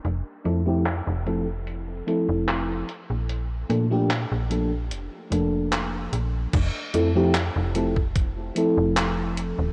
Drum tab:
CC |----------------|----------------|x---------------|
HH |x-x-x-x-x-x-x-x-|x-x-x-x-x-x-x-x-|x-x-x-x-x-x-x-x-|
CP |----x-------x---|----x-------x---|----x-------x---|
BD |----------------|----------------|o------oo-------|